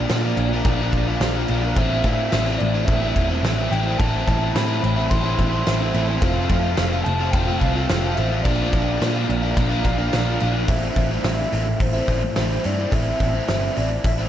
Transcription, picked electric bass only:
0.10 0.34 A#2 medium
0.37 0.61 A#1 medium
0.65 0.89 A#1 medium
0.93 1.17 A#1 medium
1.20 1.44 A#1 medium
1.50 1.73 A#1 medium
1.77 2.01 A1 medium
2.04 2.28 A2 medium
2.33 2.57 A1 medium
2.61 2.85 A1 medium
2.88 3.12 A1 medium
3.16 3.40 E1 medium
3.43 3.67 A1 medium
3.71 3.95 A1 medium
4.00 4.23 A1 medium
4.28 4.52 A1 medium
4.55 4.79 A2 medium
4.84 5.07 A1 medium
5.12 5.35 A1 loud
5.39 5.63 A1 loud
5.68 5.91 A1 medium
5.95 6.18 A1 medium
6.22 6.46 F1 loud
6.50 6.74 F2 medium
6.78 7.02 F1 medium
7.06 7.30 F1 medium
7.34 7.58 F1 medium
7.62 7.86 C2 medium
7.90 8.14 F1 medium
8.18 8.42 A1 medium
8.46 8.70 A#1 medium
8.73 8.97 A#1 medium
9.01 9.25 A#2 medium
9.29 9.53 A#1 medium
9.58 9.81 A#1 medium
9.85 10.09 A#1 medium
10.14 10.37 A#1 medium
10.42 10.65 A#1 medium
10.69 10.89 A1 medium
10.97 11.17 A1 medium
11.24 11.44 A1 medium
11.53 11.73 A1 medium
11.80 12.01 A1 medium
12.08 12.28 A1 medium
12.37 12.57 A1 medium
12.66 12.85 G2 medium
12.92 13.12 A1 medium
13.20 13.40 A1 medium
13.49 13.69 G1 medium
13.78 13.97 A1 medium
14.05 14.25 A1 medium

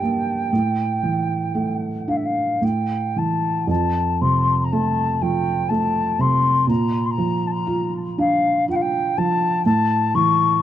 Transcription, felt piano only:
0.00 0.49 G2 medium
0.00 0.55 D3 soft
0.00 0.02 A#3 soft
0.00 0.52 A#3 soft
0.00 0.50 D4 soft
0.00 0.51 G4 soft
0.52 2.58 A2 soft
1.03 2.58 E3 soft
1.55 2.59 A3 soft
2.08 2.61 D4 soft
2.61 3.65 A2 soft
3.16 3.67 E3 soft
3.67 6.64 F2 soft
4.21 6.16 C3 soft
4.72 5.69 A3 soft
5.22 6.65 F3 soft
5.70 6.66 A3 soft
6.19 6.67 C3 soft
6.67 9.60 A#2 medium
7.18 9.12 F3 soft
7.67 8.67 F4 soft
8.18 9.61 D4 soft
8.68 9.62 F4 soft
9.18 9.64 F3 medium
9.66 10.62 A2 medium
10.15 10.62 E3 soft

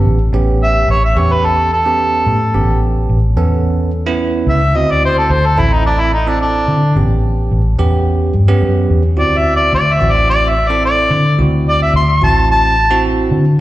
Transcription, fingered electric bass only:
0.05 0.30 A1 medium
0.32 0.84 A1 medium
0.88 1.13 A1 medium
1.16 2.22 E2 medium
2.26 2.55 A2 medium
2.54 3.05 A1 loud
3.09 3.34 A1 medium
3.36 4.43 E2 medium
4.47 4.74 C#2 medium
4.74 5.26 D2 loud
5.30 5.55 D2 medium
5.58 6.65 A1 medium
6.68 6.97 D3 loud
6.96 7.47 A1 medium
7.51 7.76 A1 medium
7.79 8.30 E2 medium
8.34 8.59 G2 medium
8.62 8.87 F#2 medium
8.90 9.17 E2 medium
9.17 9.69 D2 medium
9.73 9.98 D2 medium
10.00 11.07 A1 medium
11.11 11.40 D3 medium
11.38 11.90 D2 loud
11.93 12.19 D2 medium
12.21 13.28 A1 medium
13.31 13.60 D3 loud

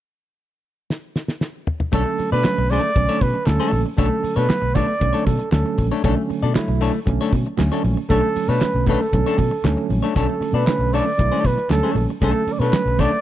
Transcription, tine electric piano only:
1.92 2.33 D3 medium
1.92 2.33 F#3 medium
1.92 2.33 A3 medium
1.92 2.33 C#4 medium
2.44 2.84 D3 medium
2.44 2.84 F#3 medium
2.44 2.85 A3 medium
2.44 2.85 C#4 medium
2.96 3.02 C#3 medium
2.96 3.36 F#3 medium
2.96 3.36 A3 medium
2.96 3.36 C#4 medium
3.02 3.39 D3 medium
3.46 3.87 D3 medium
3.46 3.87 F#3 medium
3.46 3.87 A3 medium
3.46 3.87 C#4 medium
3.97 4.38 D3 medium
3.97 4.38 F#3 medium
3.97 4.38 A3 medium
3.97 4.39 C#4 medium
4.49 4.89 D3 medium
4.49 4.90 F#3 medium
4.49 4.90 A3 medium
4.49 4.90 B3 medium
5.00 5.41 D3 medium
5.00 5.41 F#3 medium
5.00 5.41 A3 medium
5.00 5.41 C#4 medium
5.51 5.92 D3 medium
5.51 5.92 F#3 medium
5.51 5.92 A3 medium
5.51 5.93 C#4 medium
6.03 6.10 C#3 medium
6.03 6.44 F#3 medium
6.03 6.44 A3 medium
6.03 6.44 C#4 loud
6.10 6.47 D3 medium
6.54 6.95 D3 medium
6.54 6.95 F#3 medium
6.54 6.95 A3 medium
6.54 6.96 E4 loud
7.05 7.46 D3 medium
7.05 7.47 F#3 medium
7.05 7.47 A3 medium
7.05 7.47 C#4 medium
7.57 7.98 D3 medium
7.57 7.98 F#3 medium
7.57 7.98 A3 medium
7.57 7.99 C#4 loud
8.09 8.49 D3 medium
8.09 8.50 F#3 medium
8.09 8.50 A3 medium
8.09 8.50 C#4 medium
8.61 9.01 D3 medium
8.61 9.01 F#3 medium
8.61 9.02 A3 medium
8.61 9.02 C#4 medium
9.12 9.19 C#3 medium
9.12 9.53 F#3 medium
9.12 9.53 A3 medium
9.12 9.53 C#4 medium
9.18 9.56 D3 medium
9.63 10.04 D3 medium
9.63 10.04 F#3 medium
9.63 10.05 A3 medium
9.63 10.05 C#4 loud
10.15 10.55 D3 medium
10.15 10.56 F#3 medium
10.15 10.56 A3 medium
10.15 10.56 C#4 medium
10.66 10.73 C#3 medium
10.66 11.07 F#3 medium
10.66 11.07 A3 medium
10.66 11.08 C#4 medium
10.73 11.10 D3 medium
11.18 11.58 D3 medium
11.18 11.59 F#3 medium
11.18 11.59 A3 medium
11.18 11.59 E4 medium
11.70 12.10 D3 medium
11.70 12.10 F#3 medium
11.70 12.11 A3 medium
11.70 12.11 C#4 medium
12.21 12.61 D3 medium
12.21 12.62 F#3 medium
12.21 12.62 A3 medium
12.21 12.62 C#4 medium
12.72 13.13 D3 medium
12.72 13.13 F#3 medium
12.72 13.13 A3 medium
12.72 13.13 C#4 medium

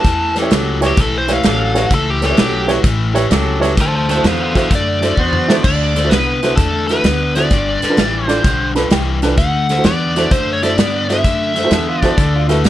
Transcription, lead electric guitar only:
0.00 0.36 A5 medium
0.87 1.00 G4 medium
1.01 1.15 A4 medium
1.18 1.31 C5 medium
1.33 1.91 F5 medium
1.94 2.10 A4 medium
2.10 2.24 G4 medium
2.26 2.70 G4 loud
3.81 3.94 C5 loud
3.81 3.95 A5 medium
3.96 4.09 C5 medium
3.96 4.10 A5 medium
4.11 4.24 C5 medium
4.11 4.25 A5 medium
4.26 4.40 A4 medium
4.26 4.41 F5 medium
4.43 4.56 A4 medium
4.43 4.56 F5 medium
4.58 4.71 A4 medium
4.58 4.72 F5 medium
4.75 5.63 D5 loud
5.64 6.12 D5 loud
6.09 6.55 B4 medium
6.56 6.86 A4 medium
6.88 7.37 B4 medium
7.35 8.27 D5 medium
8.27 8.72 C5 medium
9.38 9.86 F#5 loud
9.84 10.33 D5 medium
10.32 10.52 C5 medium
10.53 10.63 C#5 medium
10.63 11.06 D5 medium
11.10 12.01 E5 medium
12.01 12.46 D5 medium

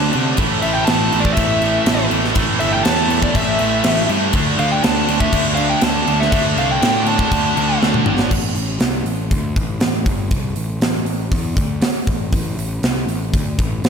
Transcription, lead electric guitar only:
0.62 0.73 E5 loud
0.73 0.87 G5 medium
0.85 1.24 A5 loud
1.20 1.34 D5 medium
1.33 2.05 E5 medium
2.60 2.72 E5 medium
2.72 2.85 G5 medium
2.83 3.19 A5 loud
3.23 3.36 D5 medium
3.36 4.10 E5 medium
4.59 4.72 F5 medium
4.72 4.83 G5 loud
4.84 5.18 A5 loud
5.20 5.44 E5 medium
5.55 5.69 F5 medium
5.70 5.84 G5 loud
5.84 6.21 A5 loud
6.20 6.43 E5 medium
6.58 6.69 F5 loud
6.71 7.05 G5 medium
7.09 7.78 A5 medium

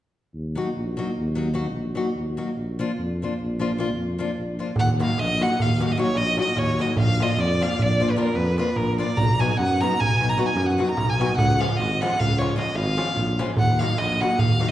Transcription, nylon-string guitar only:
0.55 0.67 F#3 medium
0.55 0.68 A#3 soft
0.55 0.68 D#4 medium
0.55 0.69 F#4 medium
0.97 1.09 F#3 medium
0.97 1.09 A#3 soft
0.97 1.10 D#4 medium
0.97 1.10 F#4 medium
1.35 1.47 F#3 medium
1.35 1.48 A#3 medium
1.35 1.48 D#4 medium
1.35 1.49 F#4 medium
1.54 1.65 F#3 medium
1.54 1.65 A#3 medium
1.54 1.66 D#4 medium
1.54 1.66 F#4 medium
1.95 2.06 F#3 medium
1.95 2.07 A#3 medium
1.95 2.07 D#4 soft
1.95 2.07 F#4 medium
2.37 2.48 F#3 soft
2.37 2.49 A#3 soft
2.37 2.49 D#4 soft
2.37 2.49 F#4 medium
2.79 2.90 F3 medium
2.79 2.90 A#3 medium
2.79 2.90 D4 medium
2.79 2.91 F4 medium
3.22 3.32 F3 soft
3.22 3.33 A#3 soft
3.22 3.33 D4 medium
3.22 3.33 F4 medium
3.59 3.70 F3 medium
3.59 3.70 A#3 medium
3.59 3.70 D4 medium
3.59 3.71 F4 medium
3.78 3.88 F3 medium
3.78 3.88 A#3 medium
3.78 3.89 D4 medium
3.78 3.89 F4 medium
4.19 4.29 F3 medium
4.19 4.29 A#3 medium
4.19 4.29 D4 medium
4.19 4.30 F4 medium
4.59 4.70 F3 medium
4.59 4.70 A#3 soft
4.59 4.70 D4 soft
4.59 4.70 F4 medium
4.99 5.10 F#3 medium
4.99 5.11 A#3 medium
4.99 5.11 D#4 medium
4.99 5.11 F#4 medium
5.40 5.51 F#3 medium
5.40 5.52 A#3 medium
5.40 5.52 D#4 soft
5.40 5.52 F#4 medium
5.80 5.90 F#3 medium
5.80 5.90 A#3 soft
5.80 5.91 D#4 medium
5.80 5.91 F#4 medium
5.97 6.08 F#3 medium
5.97 6.08 A#3 medium
5.97 6.08 D#4 medium
5.97 6.08 F#4 medium
6.37 6.48 F#3 medium
6.37 6.48 A#3 medium
6.37 6.49 D#4 soft
6.37 6.49 F#4 medium
6.79 6.89 F#3 medium
6.79 6.90 A#3 medium
6.79 6.90 D#4 medium
6.79 6.91 F#4 medium
7.20 7.31 F3 medium
7.20 7.31 A#3 medium
7.20 7.32 D4 medium
7.20 7.32 F4 medium
7.61 7.72 F3 medium
7.61 7.72 A#3 soft
7.61 7.73 D4 soft
7.61 7.72 F4 medium
8.00 8.10 F3 medium
8.00 8.10 A#3 medium
8.00 8.11 D4 medium
8.00 8.11 F4 medium
8.16 8.27 F3 medium
8.16 8.27 A#3 medium
8.16 8.28 D4 medium
8.16 8.28 F4 medium
8.58 8.68 F3 medium
8.58 8.69 A#3 medium
8.58 8.69 D4 soft
8.58 8.69 F4 medium
8.98 9.09 F3 medium
8.98 9.10 A#3 medium
8.98 9.10 D4 medium
8.98 9.10 F4 medium
9.39 9.50 F#3 medium
9.39 9.51 B3 medium
9.39 9.51 D#4 medium
9.39 9.51 F#4 medium
9.81 9.92 F#3 medium
9.81 9.92 B3 medium
9.81 9.93 D#4 medium
9.81 9.93 F#4 medium
10.21 10.31 F#3 medium
10.21 10.31 B3 medium
10.21 10.31 D#4 medium
10.21 10.32 F#4 medium
10.38 10.48 F#3 medium
10.38 10.48 B3 medium
10.38 10.48 D#4 medium
10.38 10.48 F#4 medium
10.78 10.89 F#3 medium
10.78 10.89 B3 medium
10.78 10.89 D#4 medium
10.78 10.89 F#4 medium
11.19 11.30 F#3 medium
11.19 11.30 B3 medium
11.19 11.30 D#4 medium
11.19 11.31 F#4 medium
11.59 11.70 F3 medium
11.59 11.71 G#3 medium
11.59 11.71 C#4 medium
11.59 11.71 F4 medium
12.01 12.12 F3 medium
12.01 12.12 G#3 medium
12.01 12.12 C#4 medium
12.01 12.13 F4 medium
12.40 12.50 F3 medium
12.40 12.50 G#3 medium
12.40 12.51 C#4 soft
12.40 12.51 F4 medium
12.56 12.67 F3 medium
12.56 12.67 G#3 medium
12.56 12.68 C#4 medium
12.56 12.68 F4 medium
12.97 13.08 F3 medium
12.97 13.08 G#3 medium
12.97 13.08 C#4 medium
12.97 13.09 F4 medium
13.39 13.50 F3 medium
13.39 13.50 G#3 medium
13.39 13.50 C#4 medium
13.39 13.51 F4 medium
13.80 13.91 F#3 medium
13.80 13.91 A#3 soft
13.80 13.92 D#4 medium
13.80 13.92 F#4 medium
14.21 14.32 F#3 medium
14.21 14.33 A#3 medium
14.21 14.33 D#4 medium
14.21 14.33 F#4 medium
14.59 14.70 F#3 medium
14.59 14.71 A#3 soft
14.59 14.71 D#4 medium
14.59 14.71 F#4 medium

